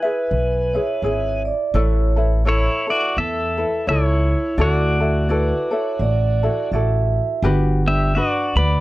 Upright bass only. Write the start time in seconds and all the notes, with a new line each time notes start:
0.31 B1
1.02 G#1
1.74 A1
3.17 E2
3.87 C#2
4.58 D2
5.99 A1
6.72 A1
7.42 G1
8.56 D2